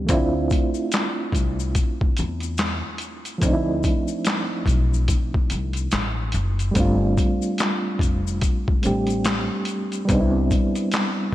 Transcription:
0.00 0.11 G3 medium
0.00 0.11 B3 medium
0.00 0.09 C4 medium
0.00 0.10 G4 medium
0.05 0.15 E3 medium
0.05 3.37 A3 medium
0.05 closed hi-hat medium
0.09 0.48 D2 loud
0.09 3.38 C4 medium
0.09 3.39 D4 medium
0.09 3.39 F4 medium
0.09 kick loud
0.09 shaker medium
0.13 3.41 E4 medium
0.50 kick medium
0.50 closed hi-hat medium
0.50 shaker soft
0.74 shaker soft
0.92 snare loud
0.92 clap medium
0.92 closed hi-hat medium
0.92 shaker medium
1.32 1.72 C2 medium
1.32 kick medium
1.32 closed hi-hat medium
1.32 shaker medium
1.60 shaker medium
1.75 kick medium
1.75 closed hi-hat medium
1.75 shaker medium
2.01 kick medium
2.17 2.81 E2 medium
2.17 closed hi-hat medium
2.17 shaker medium
2.40 closed hi-hat soft
2.40 shaker medium
2.58 snare loud
2.58 clap medium
2.58 closed hi-hat medium
2.58 shaker medium
2.98 closed hi-hat medium
2.98 shaker soft
3.25 closed hi-hat soft
3.25 shaker soft
3.38 6.70 F3 medium
3.38 6.71 A3 medium
3.38 kick loud
3.38 closed hi-hat medium
3.42 3.81 D2 loud
3.42 6.72 C4 medium
3.42 6.73 D4 medium
3.42 shaker medium
3.47 3.52 D#4 medium
3.53 6.77 E4 medium
3.83 kick medium
3.83 closed hi-hat medium
3.83 shaker soft
4.08 shaker medium
4.25 snare loud
4.25 clap medium
4.25 closed hi-hat medium
4.25 shaker medium
4.66 5.05 B1 loud
4.66 kick medium
4.66 closed hi-hat medium
4.66 shaker medium
4.94 shaker medium
5.08 kick medium
5.08 closed hi-hat medium
5.08 shaker medium
5.34 kick medium
5.50 5.90 C2 medium
5.50 closed hi-hat medium
5.50 shaker medium
5.73 closed hi-hat soft
5.73 shaker medium
5.91 6.31 A1 medium
5.91 snare loud
5.91 clap medium
5.91 closed hi-hat medium
5.91 shaker medium
6.32 6.73 F#1 medium
6.32 closed hi-hat medium
6.32 shaker soft
6.59 closed hi-hat soft
6.59 shaker medium
6.71 8.78 G3 medium
6.71 8.79 A3 medium
6.71 closed hi-hat medium
6.75 7.15 G1 loud
6.75 8.80 C4 medium
6.75 8.81 D4 medium
6.75 kick loud
6.75 shaker medium
6.80 8.82 F4 medium
7.17 kick medium
7.17 closed hi-hat medium
7.17 shaker soft
7.42 shaker medium
7.58 snare loud
7.58 clap medium
7.58 closed hi-hat medium
7.58 shaker medium
7.99 8.39 F1 medium
7.99 kick medium
7.99 closed hi-hat medium
7.99 shaker medium
8.27 shaker medium
8.41 kick medium
8.41 closed hi-hat medium
8.41 shaker medium
8.68 kick medium
8.82 9.47 A1 medium
8.82 10.04 G3 medium
8.82 10.09 A3 medium
8.82 10.09 C4 medium
8.82 10.10 D4 soft
8.82 closed hi-hat medium
8.82 shaker medium
8.87 10.10 G4 medium
9.07 closed hi-hat soft
9.07 shaker medium
9.25 snare loud
9.25 clap loud
9.25 closed hi-hat medium
9.25 shaker medium
9.65 closed hi-hat medium
9.65 shaker soft
9.92 closed hi-hat soft
9.92 shaker medium
10.05 10.48 C2 loud
10.05 11.35 G3 medium
10.05 11.35 B3 medium
10.05 kick medium
10.05 closed hi-hat medium
10.09 11.35 C4 medium
10.09 11.35 D4 medium
10.09 shaker medium
10.14 10.19 D#4 medium
10.20 11.35 E4 medium
10.51 kick medium
10.51 closed hi-hat medium
10.51 shaker soft
10.75 closed hi-hat soft
10.75 shaker soft
10.92 snare loud
10.92 clap medium
10.92 closed hi-hat medium
10.92 shaker medium

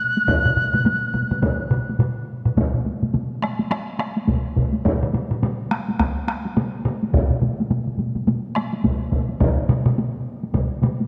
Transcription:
0.00 1.95 F#6 medium
0.17 taiko high soft
0.28 taiko medium
0.28 taiko low-mid medium
0.28 taiko mid medium
0.28 taiko high medium
0.45 taiko low-mid medium
0.45 taiko mid medium
0.56 taiko low-mid medium
0.56 taiko mid medium
0.73 taiko low-mid medium
0.73 taiko mid medium
0.73 taiko high soft
0.85 taiko low-mid medium
0.85 taiko mid medium
0.85 taiko high medium
1.14 taiko low-mid medium
1.14 taiko mid medium
1.14 taiko high soft
1.31 taiko low-mid medium
1.31 taiko mid medium
1.31 taiko high soft
1.42 taiko medium
1.42 taiko low-mid medium
1.42 taiko mid medium
1.42 taiko high medium
1.70 taiko low-mid medium
1.70 taiko mid medium
1.89 taiko high soft
1.99 taiko low-mid medium
1.99 taiko mid medium
2.45 taiko low-mid medium
2.45 taiko mid medium
2.56 taiko medium
2.56 taiko low-mid medium
2.56 taiko high medium
2.74 taiko low-mid medium
2.85 taiko low-mid medium
2.85 taiko high medium
3.03 taiko low-mid medium
3.03 taiko high medium
3.14 taiko low-mid medium
3.14 taiko high medium
3.42 taiko rim medium
3.42 taiko high soft
3.59 taiko high medium
3.71 taiko rim medium
3.71 taiko high medium
3.99 taiko rim medium
3.99 taiko high medium
4.16 taiko high soft
4.27 taiko medium
4.27 taiko low-mid medium
4.27 taiko high medium
4.56 taiko medium
4.56 taiko low-mid medium
4.74 taiko high medium
4.85 taiko medium
4.85 taiko mid medium
4.85 taiko high medium
5.03 taiko mid medium
5.13 taiko mid medium
5.13 taiko high soft
5.31 taiko mid medium
5.43 taiko mid loud
5.43 taiko high medium
5.71 taiko rim medium
5.71 taiko high soft
5.88 taiko high medium
5.99 taiko rim medium
5.99 taiko medium
5.99 taiko high medium
6.28 taiko rim medium
6.28 taiko high medium
6.45 taiko high medium
6.57 taiko mid medium
6.57 taiko high medium
6.85 taiko mid medium
6.85 taiko high medium
7.03 taiko high medium
7.13 taiko medium
7.13 taiko low-mid medium
7.13 taiko high medium
7.30 taiko low-mid medium
7.42 taiko low-mid loud
7.42 taiko high medium
7.60 taiko high medium
7.70 taiko low-mid medium
7.70 taiko high medium
7.87 taiko low-mid medium
7.98 taiko low-mid medium
7.98 taiko high medium
8.16 taiko low-mid medium
8.16 taiko high medium
8.27 taiko low-mid medium
8.27 taiko high medium
8.55 taiko rim medium
8.55 taiko high medium
8.73 taiko high medium
8.84 taiko medium
8.84 taiko low-mid medium
8.84 taiko high medium
9.12 taiko medium
9.12 taiko low-mid loud
9.12 taiko high soft
9.29 taiko high medium
9.40 taiko loud
9.40 taiko low-mid loud
9.40 taiko mid medium
9.40 taiko high medium
9.69 taiko low-mid medium
9.69 taiko mid loud
9.69 taiko high medium
9.86 taiko low-mid medium
9.86 taiko mid loud
9.86 taiko high medium
9.98 taiko high medium
10.43 taiko high medium
10.54 taiko medium
10.54 taiko low-mid medium
10.54 taiko mid medium
10.54 taiko high medium
10.82 taiko low-mid medium
10.82 taiko mid medium
10.82 taiko high medium
11.00 taiko high medium

